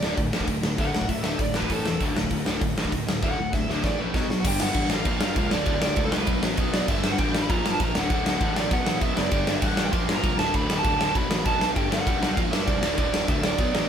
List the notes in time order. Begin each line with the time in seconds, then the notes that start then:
Already playing: D5
0.02 D1 D2 A2 D3, snare
0.17 D1 D2 A2, kick, open hi-hat
0.33 A1 D2 A2 D3, snare
0.40 kick
0.47 D1 D2 A2, kick, open hi-hat
0.63 D1 D2 A2, snare
0.78 D1 D2 A2 D3 F#5, kick, open hi-hat
0.93 D1 D2 A2, snare
1.01 kick
1.08 D1 D2 A2 E5, kick, open hi-hat
1.23 D1 D2 A2 D3 E5, snare
1.39 D1 D2 A2 D5, kick, open hi-hat
1.54 A1 D2 A2 D3 B4, snare
1.62 kick
1.70 A1 A2 E3 A3 A4, kick, open hi-hat
1.86 E1 A2 E3, snare
2.01 D1 D2 A2 D3, kick, open hi-hat
2.16 D1 D2 A2, snare
2.23 kick
2.30 D1 D2 A2, kick, open hi-hat
2.46 D1 D2 A2 D3, snare
2.61 D1 D2 A2, kick, open hi-hat
2.77 A1 D2 A2 D3, snare
2.85 kick
2.92 D1 D2 A2, kick, open hi-hat
3.07 D1 D2 A2, snare
3.22 D1 D2 A2 D3 F#5, kick, snare
3.38 D1 D2 A2
3.53 D1 D2 A2 E5, kick, snare
3.68 D1 D2 A2 D3 E5, snare
3.82 A1 A2 E3 A3 D5, kick, snare
3.98 A#1 A2 E3 A3 B4
4.14 B1 B2 F#3 B3 F#4, kick, snare
4.29 B1 B2 F#3, snare
4.40 F#5
4.44 G1 G2 D3 G3 G5, kick, crash
4.60 G2 D3 G3 F#5, snare
4.74 A1 G2 D3 G3, kick, crash
4.90 G2 D3 G3 F5, snare
5.05 A#1 A#2 F3 A#3, kick, crash
5.20 G2 A#2 F3 A#3, snare
5.36 C#2 A#2 F3 A#3, kick, crash
5.51 D1 D2 A2 D3 D5, snare
5.66 D1 D2 A2 D3 D5, kick, crash
5.81 D2 A2 D3, snare
5.96 C#2 D2 A2 D3, kick, crash
6.04 A4
6.12 D2 A2 D3 B4, snare
6.27 B1 B2 F#3 B3, kick, crash
6.42 A1 B2 F#3 B3, snare
6.57 B1 B2 F#3 B3, kick, crash
6.73 B1 B2 F#3 B3 D5, snare
6.88 G1 G2 D3 G3 E5, kick, crash
7.04 G2 D3 G3, snare
7.12 F#5
7.18 A1 G2 D3 G3 G5, kick, crash
7.34 G2 D3 G3, snare
7.42 B5
7.49 A#1 A#2 F3 A#3 A#5, kick, crash
7.64 G2 A#2 F3 A#3, snare
7.73 A5
7.79 A#1 A#2 F3 A#3 A#5, kick, crash
7.95 D1 D2 A2 D3 F#5, snare
8.10 D1 D2 A2 D3 F#5, kick, crash
8.26 D2 A2 D3, snare
8.41 A1 D2 A2 D3, kick, crash
8.55 D2 A2 D3 D5, snare
8.71 B1 B2 F#3 B3 F#5, kick, crash
8.86 A1 B2 F#3 B3, snare
9.01 B1 B2 F#3 B3 E5, kick, crash
9.16 F#1 B2 F#3 B3 D5, snare
9.31 G1 G2 D3 G3, kick, crash
9.47 G2 D3 G3, snare
9.54 E5
9.61 A1 G2 D3 G3 F#5, kick, crash
9.77 G2 D3 G3, snare
9.85 G5
9.92 A#1 A#2 F3 A#3 C6, kick, crash
10.07 G2 A#2 F3 A#3, snare
10.15 A#5
10.23 C2 A#2 F3 A#3, kick, crash
10.38 D1 D2 A2 D3 A5, snare
10.53 D1 D2 A2 D3 B5, kick, crash
10.69 D2 A2 D3, snare
10.78 A5
10.84 D1 D2 A2 D3 A5, kick, crash
10.99 D2 A2 D3, snare
11.06 A5
11.14 B1 B2 F#3 B3 B5, kick, crash
11.30 A1 B2 F#3 B3, snare
11.39 B5
11.45 B1 B2 F#3 B3 A5, kick, crash
11.60 B1 B2 F#3 B3, snare
11.75 G1 G2 D3 G3 G5, kick, crash
11.91 G2 D3 G3 F#5, snare
12.06 B1 G2 D3 G3, kick, crash
12.21 G2 D3 G3, snare
12.35 A#1 A#2 F3 A#3 F5, kick, crash
12.51 G2 A#2 F3 A#3 E5, snare
12.65 C2 A#2 F3 A#3 D5, kick, crash
12.82 D1 D2 A2 D3, snare
12.97 D1 D2 A2 D3 D5, kick, crash
13.13 D2 A2 D3, snare
13.28 D1 D2 A2 D3 E5, kick, crash
13.43 D2 A2 D3 D5, snare
13.58 B1 B2 F#3 B3, kick, crash
13.74 A1 B2 F#3 B3, snare